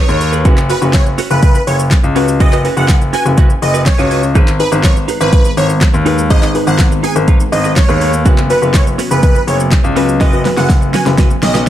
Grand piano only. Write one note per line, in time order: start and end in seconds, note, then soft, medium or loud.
0.09 0.45 D#2 loud
0.45 0.70 F#1 loud
0.82 1.14 F#1 medium
1.31 1.55 F#1 medium
1.67 1.92 F#1 medium
2.04 2.40 C#2 loud
2.40 2.65 F#1 loud
2.77 3.09 F#1 medium
3.26 3.50 F#1 medium
3.62 3.87 F#1 medium
3.99 4.35 C#2 loud
4.35 4.60 G#1 loud
4.72 5.05 G#1 medium
5.21 5.45 G#1 medium
5.57 5.82 G#1 loud
5.94 6.30 D#2 loud
6.31 6.55 G#1 loud
6.67 7.00 G#1 medium
7.16 7.40 G#1 medium
7.52 7.77 G#1 medium
7.89 8.26 D#2 loud
8.26 8.50 F#1 loud
8.62 8.95 F#1 medium
9.11 9.35 F#1 medium
9.47 9.72 F#1 medium
9.84 10.21 C#2 loud
10.57 10.90 F#1 medium
11.06 11.30 F#1 medium
11.43 11.65 B1 medium